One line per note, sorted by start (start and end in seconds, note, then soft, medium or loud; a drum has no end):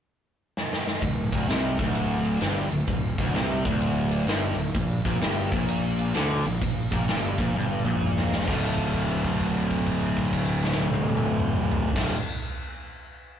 0.57 snare medium
0.73 snare medium
0.87 snare medium
1.02 1.30 D1 medium
1.02 1.26 D2 medium
1.02 kick medium
1.02 ride loud
1.32 1.48 D1 medium
1.32 1.48 D2 medium
1.32 kick loud
1.32 ride medium
1.48 1.77 C2 medium
1.48 1.78 C3 loud
1.48 snare loud
1.48 ride medium
1.79 2.38 D1 medium
1.79 2.41 D2 loud
1.79 kick medium
1.79 ride medium
1.95 ride medium
2.25 ride medium
2.41 2.70 G1 loud
2.41 2.70 G2 loud
2.41 snare medium
2.41 ride medium
2.70 2.87 D1 medium
2.70 2.84 D2 medium
2.70 ride medium
2.87 3.16 D1 medium
2.87 3.12 D2 medium
2.87 kick medium
2.87 ride loud
3.18 3.33 D1 medium
3.18 3.35 D2 loud
3.18 kick medium
3.18 ride medium
3.34 3.63 C2 medium
3.34 3.65 C3 loud
3.34 snare loud
3.34 ride medium
3.65 4.24 D1 medium
3.65 4.28 D2 loud
3.65 kick medium
3.65 ride medium
3.81 ride medium
4.11 ride medium
4.26 4.55 G1 medium
4.26 4.58 G2 loud
4.26 snare loud
4.26 ride medium
4.56 4.72 D1 medium
4.56 4.71 D2 medium
4.56 ride medium
4.75 5.03 A#1 medium
4.75 5.00 A#2 medium
4.75 kick medium
4.75 ride medium
5.05 5.20 A#1 loud
5.05 5.20 A#2 loud
5.05 kick medium
5.05 ride medium
5.21 5.50 G1 medium
5.21 5.51 G2 medium
5.21 snare loud
5.21 ride medium
5.51 6.11 A#1 medium
5.51 6.14 A#2 loud
5.51 kick loud
5.51 ride medium
5.68 ride medium
5.99 ride medium
6.14 6.43 D2 medium
6.14 6.44 D3 loud
6.14 snare loud
6.14 ride loud
6.45 6.61 A#1 medium
6.45 6.58 A#2 medium
6.45 ride medium
6.61 6.90 A#1 medium
6.61 6.86 A#2 medium
6.61 kick medium
6.61 ride loud
6.92 7.07 A#1 loud
6.92 7.07 A#2 medium
6.92 kick loud
6.92 ride medium
7.07 7.37 G1 medium
7.07 7.37 G2 medium
7.07 snare loud
7.07 ride medium
7.38 7.54 A#1 medium
7.38 7.54 A#2 loud
7.38 kick loud
7.38 ride medium
7.55 7.83 G1 medium
7.55 7.84 G2 loud
7.55 high tom medium
7.84 8.44 A#1 loud
7.84 8.45 A#2 loud
7.84 mid tom medium
8.01 mid tom medium
8.17 snare medium
8.32 snare medium
8.40 snare medium
8.46 11.85 D1 medium
8.46 11.93 D2 medium
8.46 11.95 A2 medium
8.46 11.96 D3 medium
8.46 11.96 A3 loud
8.46 kick loud
8.46 crash medium
8.50 11.97 F4 loud
8.78 kick medium
8.78 crash soft
8.87 crash soft
8.94 kick medium
8.94 crash soft
9.09 crash soft
9.24 kick medium
9.24 crash soft
9.32 crash medium
9.40 kick medium
9.40 crash soft
9.55 crash medium
9.71 kick medium
9.71 crash soft
9.79 crash soft
9.86 kick medium
9.86 crash soft
10.01 crash soft
10.17 kick medium
10.17 crash soft
10.25 crash medium
10.33 kick medium
10.33 crash medium
10.48 crash soft
10.64 snare medium
10.72 snare medium
10.79 high tom medium
10.94 high tom medium
11.09 high tom medium
11.17 mid tom loud
11.25 mid tom medium
11.40 mid tom medium
11.55 mid tom loud
11.63 mid tom medium
11.71 floor tom loud
11.87 floor tom loud
11.93 12.12 D1 medium
11.93 12.12 D2 medium
11.93 12.13 A2 medium
11.93 12.13 D3 medium
11.93 12.14 A3 loud
11.93 kick loud
11.93 crash loud
11.97 12.14 F4 medium
11.97 snare loud